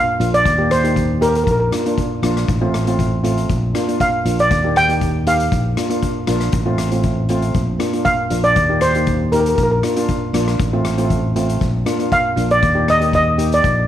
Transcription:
Already playing: F5
0.20 A#1 A#3 D4 F4, closed hi-hat
0.34 D5, closed hi-hat
0.45 D#2, kick, closed hi-hat
0.58 A#3 D#4 G4
0.71 C5, cross-stick, closed hi-hat
0.84 A#3 D#4 G4, closed hi-hat
0.96 kick, closed hi-hat
1.21 A#3 D#4 G4 A#4, closed hi-hat
1.29 A#4
1.35 A#4, closed hi-hat
1.44 A#1 A#4, kick, closed hi-hat
1.51 A#4
1.60 A#4
1.72 A#3 D4 F4, cross-stick, closed hi-hat
1.86 A#3 D4 F4, closed hi-hat
1.98 kick, closed hi-hat
2.22 A#1 A#3 D4 F4, cross-stick, closed hi-hat
2.37 cross-stick, closed hi-hat
2.48 A1, kick, closed hi-hat
2.61 A3 C4 F4
2.74 cross-stick, closed hi-hat
2.87 A3 C4 F4, closed hi-hat
2.99 kick, closed hi-hat
3.24 A3 C4 F4, closed hi-hat
3.38 closed hi-hat
3.49 A#1, kick, closed hi-hat
3.74 A#3 D4 F4, cross-stick, closed hi-hat
3.88 A#3 D4 F4, closed hi-hat
4.00 F5, kick, closed hi-hat
4.25 A#1 A#3 D4 F4, closed hi-hat
4.39 D5, closed hi-hat
4.51 D#2, kick, closed hi-hat
4.64 A#3 D#4 G4
4.76 G5, cross-stick, closed hi-hat
4.89 A#3 D#4 G4, closed hi-hat
5.01 kick, closed hi-hat
5.27 A#3 D#4 G4 F5, closed hi-hat
5.40 closed hi-hat
5.52 A#1, kick, closed hi-hat
5.77 A#3 D4 F4, cross-stick, closed hi-hat
5.90 A#3 D4 F4, closed hi-hat
6.03 kick, closed hi-hat
6.27 A#1 A#3 D4 F4, cross-stick, closed hi-hat
6.41 cross-stick, closed hi-hat
6.52 A1, kick, closed hi-hat
6.66 A3 C4 F4
6.78 cross-stick, closed hi-hat
6.91 A3 C4 F4, closed hi-hat
7.03 kick, closed hi-hat
7.29 A3 C4 F4, closed hi-hat
7.42 closed hi-hat
7.54 A#1, kick, closed hi-hat
7.79 A#3 D4 F4, cross-stick, closed hi-hat
7.93 A#3 D4 F4, closed hi-hat
8.05 F5, kick, closed hi-hat
8.30 A#1 A#3 D4 F4, closed hi-hat
8.44 D5, closed hi-hat
8.56 D#2, kick, closed hi-hat
8.70 A#3 D#4 G4
8.81 C5, cross-stick, closed hi-hat
8.95 A#3 D#4 G4, closed hi-hat
9.07 kick, closed hi-hat
9.32 A#3 D#4 G4 A#4, closed hi-hat
9.40 A#4
9.46 A#4, closed hi-hat
9.55 A#1 A#4, kick, closed hi-hat
9.63 A#4
9.71 A#4
9.83 A#3 D4 F4, cross-stick, closed hi-hat
9.96 A#3 D4 F4, closed hi-hat
10.09 kick, closed hi-hat
10.33 A#1 A#3 D4 F4, cross-stick, closed hi-hat
10.48 cross-stick, closed hi-hat
10.59 A1, kick, closed hi-hat
10.73 A3 C4 F4
10.85 cross-stick, closed hi-hat
10.98 A3 C4 F4, closed hi-hat
11.10 kick, closed hi-hat
11.36 A3 C4 F4, closed hi-hat
11.50 closed hi-hat
11.61 A#1, kick, closed hi-hat
11.86 A#3 D4 F4, cross-stick, closed hi-hat
11.99 A#3 D4 F4, closed hi-hat
12.12 F5, kick, closed hi-hat
12.36 A#1 A#3 D4 F4, closed hi-hat
12.51 D5, closed hi-hat
12.63 D#2, kick, closed hi-hat
12.75 A#3 D#4 G4
12.88 D#5, cross-stick, closed hi-hat
13.00 A#3 D#4 G4, closed hi-hat
13.13 D#5, kick, closed hi-hat
13.38 A#3 D#4 G4, closed hi-hat
13.52 D5, closed hi-hat
13.64 A#1, kick, closed hi-hat

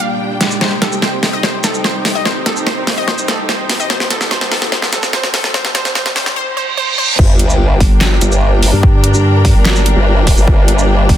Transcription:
Already playing: A#2 G3 A#3 D4 G4 G5, riser
0.00 F5
0.41 snare, closed hi-hat
0.51 shaker
0.61 C3 G3 D#4 C5, snare
0.82 A4, snare, closed hi-hat
0.92 C5, shaker
1.02 C5, snare
1.23 snare, open hi-hat
1.33 D#5
1.43 C5, snare
1.64 A4, snare, closed hi-hat, shaker
1.74 shaker
1.84 C5, snare
2.05 snare, open hi-hat
2.15 D#5
2.25 C5, snare
2.46 A4, snare, closed hi-hat
2.56 shaker
2.66 C5, snare
2.87 snare, open hi-hat
2.98 D#5
3.08 C5, snare
3.18 shaker
3.28 A4, snare, closed hi-hat
3.49 C5, snare
3.69 snare, open hi-hat
3.80 D#5, shaker
3.90 A4 C5, snare
4.00 snare
4.10 A4, snare, closed hi-hat
4.21 snare, shaker
4.31 C5, snare
4.41 snare
4.52 A4, snare, open hi-hat
4.62 snare
4.72 C5, snare
4.82 snare
4.93 A4, snare, closed hi-hat, shaker
5.03 snare, shaker
5.13 C5, snare
5.24 snare
5.34 A4, snare, open hi-hat
5.44 snare
5.54 C5, snare
5.65 snare
5.75 C5, snare, closed hi-hat
5.85 snare, shaker
5.95 C5, snare
6.06 snare
6.16 C5, snare, open hi-hat
6.26 snare
6.36 C5, reverse cymbal
6.57 C5
6.77 C5
6.98 C5
7.19 G1 D3 G3 A#3 D4 G4, kick, crash, sub drop
7.37 A#4 G5, closed hi-hat
7.50 shaker
7.80 G1, kick, open hi-hat
8.01 snare, clap
8.21 G1, closed hi-hat, shaker
8.32 shaker
8.63 G1, open hi-hat
8.73 G2
8.83 kick
9.04 closed hi-hat
9.14 shaker
9.45 kick, open hi-hat
9.55 G1
9.65 snare, clap
9.76 shaker
9.86 closed hi-hat
9.96 G1
10.27 kick, open hi-hat
10.37 G1, shaker
10.48 G1, kick
10.68 closed hi-hat
10.78 shaker
11.09 G1, kick, open hi-hat

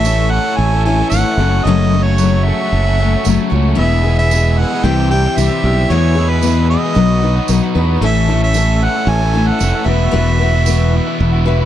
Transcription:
Already playing: A1 A4 C#5 E5 C#6
0.03 A2 E3 A3 C#4 E4 A4, tambourine
0.31 E3 A3 C#4 A4 F#5
0.45 A3 C#4 A4
0.56 A1 G#5
0.73 A3 C#4 A4
0.85 E3 A3 C#4 E4 G#5
0.89 A4
0.99 A3 C#4 A4
1.09 G#1 A2 F#5, tambourine
1.14 E3 A3 C#4 E4 A4
1.25 A3 C#4 A4
1.37 F#1 F#2 C#3 F#3 A3 A4 F#5 C#6
1.42 C#4 F#4
1.64 F#1 F#2 C#3 D#5
1.68 F#3 A3 C#4 F#4 A4
1.93 F#3 A3 C#4 F#4 A4
2.03 F#4 C#5
2.08 F#3 A3 C#4
2.18 F#2 C#3 F#3 A3 C#4 F#4, tambourine
2.22 A4
2.44 F#3 A3 E5
2.49 C#4 F#4
2.60 F#3 A3 C#4 F#4
2.72 F#1
2.87 F#3 A3 C#4 F#4
2.98 F#3 A3 C#4 A4
3.03 F#4
3.13 A3 C#4 F#4
3.17 F#3
3.24 F#1 F#2 C#3 F#3 A3 A4, tambourine
3.29 F#3 A3 C#4 F#4
3.40 F#3 A3 C#4 F#4
3.50 C#2 F#3 A3 C#4 A4
3.55 A3 C#4 F#4
3.75 E1 E3 B3 E4 G#4 B4 E5 G#5 E6
3.79 E2 B2 E3 G#3 B3 G#4
4.03 E3 E4 G#4
4.07 G#3 B3 G#4
4.19 G#3 B3 G#4 E5
4.24 E3
4.31 E2 B2 E3 E4, tambourine
4.35 G#3 B3 G#4
4.59 E3 G#3 B3 F#5
4.63 G#4
4.73 E3 G#3 B3 G#4
4.84 C2 C3 E3 G3 C4 E4 C5 E5 G5
4.88 C4 G4
4.99 G3 C4 G4
5.09 E3 E4 G4 G5
5.14 G3 C4 G4
5.26 G3 C4 G4
5.37 C2 C3 E3 G3 C4 E4 E5, tambourine
5.41 C4 G4
5.50 G3 C4 G4
5.63 B1 E3 G3 C4 E4
5.67 G4
5.90 E2 B2 E3 G#3 B3 E4 G#4 B4 C#5 G#5 E6
6.15 E3 G#3 B3 E4 G#4
6.20 G#4
6.30 G#3 B3 G#4 B4
6.34 E3
6.43 E2 B2 E3 G#3 E4, tambourine
6.47 B3 G#4
6.70 E3 G#3 B3 G#4 D#5
6.84 E3 G#3 B3 G#4
6.95 B1 B2 F#3 B3 B4 D#5 F#5 D#6
6.99 D#4 F#4
7.10 B3 D#4 F#4
7.22 F#3 B3 D#4 F#4 B4
7.35 B3 D#4 F#4
7.48 B1 B2 F#3 B3 B4, tambourine
7.52 D#4 F#4
7.63 B3 D#4 F#4
7.75 E2 F#3 B3 D#4 B4
7.79 F#4
8.01 A1 A2 E3 A3 E4 A4 C#5 E5 E6
8.05 C#4 A4
8.28 E3 A3 C#4 E4 A4
8.41 A3 C#4 A4 E5
8.54 A2 E3 A3 C#4 E4 A4, tambourine
8.81 E3 A3 C#4 A4 F#5
8.96 A3 C#4 A4
9.07 A1 G#5
9.22 A3 C#4 A4
9.34 E3 A3 C#4 E4 A4
9.38 A4
9.47 C#4 A4 F#5
9.52 A3
9.60 F1 A2 E3 A3 C#4 E4 A4, tambourine
9.74 C#4 A4
9.78 A3
9.84 E1 F#4 B4 E5 F#5
9.88 E2 B2 E3 B3 E4 F#4
10.11 E1 E3 B3 F#4 B4
10.16 E2 B2 E3 B3 E4 F#4
10.39 E3 B3 F#4 B4
10.43 E4 F#4
10.54 E3 B3 E4 F#4
10.65 E2 B2 E3 F#4 B4, tambourine
10.70 E3 B3 E4 F#4
10.94 E3 B3 E4 F#4
11.06 E3 B3 E4 F#4
11.20 E1
11.33 E3 B3 E4 F#4
11.45 E3 B3 E4 F#4 B4
11.59 B3 E4 F#4

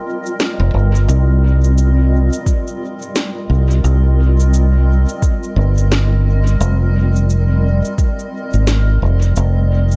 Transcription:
Already playing: G3 C4 F4 A#4 D#5
0.26 shaker
0.40 snare, shaker
0.60 F1
0.74 G1
0.95 shaker
1.08 C2, shaker
1.64 shaker
1.78 shaker
2.33 shaker
2.46 kick, shaker
2.67 shaker
3.02 shaker
3.16 snare, shaker
3.50 C2
3.71 shaker
3.84 C2, shaker
4.40 shaker
4.54 shaker
5.09 shaker
5.22 kick, shaker
5.43 shaker
5.56 G1
5.78 shaker
5.92 snare, shaker
6.47 shaker
6.61 F1, shaker
7.16 shaker
7.30 shaker
7.85 shaker
7.98 kick, shaker
8.19 shaker
8.53 G#1, shaker
8.67 snare, shaker
9.02 F1
9.22 shaker
9.36 F1, shaker
9.91 shaker

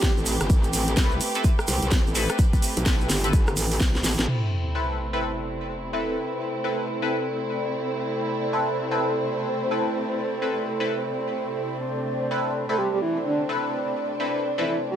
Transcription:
Already playing: A3 C4 G4 B4
0.02 G4, kick, snare, shaker
0.17 A1, shaker
0.26 open hi-hat, shaker
0.41 G1, cross-stick, closed hi-hat, shaker
0.50 A1, kick, closed hi-hat, shaker
0.63 closed hi-hat, shaker
0.73 A1, open hi-hat, shaker
0.88 closed hi-hat, shaker
0.97 C2 C4 E4 A4 B4, kick, snare, closed hi-hat, shaker
1.11 shaker
1.21 open hi-hat, shaker
1.35 C4 E4 A4 B4, closed hi-hat, shaker
1.44 kick, closed hi-hat, shaker
1.59 cross-stick, shaker
1.67 C2, open hi-hat, shaker
1.83 C2, closed hi-hat, shaker
1.91 kick, snare, closed hi-hat, shaker
2.06 A1, shaker
2.15 C4 E4 A4 B4, open hi-hat, shaker
2.29 cross-stick, closed hi-hat, shaker
2.39 kick, closed hi-hat, shaker
2.53 kick, closed hi-hat, shaker
2.62 open hi-hat, shaker
2.77 B1, closed hi-hat, shaker
2.86 C4 E4 A4 B4, kick, snare, closed hi-hat, shaker
3.00 shaker
3.10 G1, snare, open hi-hat, shaker
3.24 C4 E4 A4 B4, closed hi-hat, shaker
3.33 kick, closed hi-hat, shaker
3.47 cross-stick, shaker
3.57 A1, open hi-hat, shaker
3.72 open hi-hat, shaker
3.80 C2, kick, snare, shaker
3.95 snare, shaker
4.04 A1, snare, open hi-hat, shaker
4.19 A1, snare, closed hi-hat, shaker
4.28 C3 A3 C4 E4 A4, crash, sub drop
4.46 G5
4.60 D5
4.75 C4 E4 A4 B4
5.13 C4 E4 A4 B4
5.29 C5
5.93 C4 E4 A4 B4
6.64 C4 E4 A4 B4
7.02 C4 E4 A4 B4
8.53 C4 E4 A4 B4
8.91 C4 E4 A4 B4
9.71 C4 E4 A4 B4
10.42 C4 E4 A4 B4
10.80 C4 E4 A4 B4
11.84 D4
12.31 C4 E4 A4 B4
12.69 C4 E4 A4 B4
12.78 G4
12.93 G4
13.02 E4
13.25 D4
13.49 C4 E4 A4 B4
14.20 C4 E4 A4 B4
14.58 C4 E4 A4 B4
14.67 E4
14.91 G4

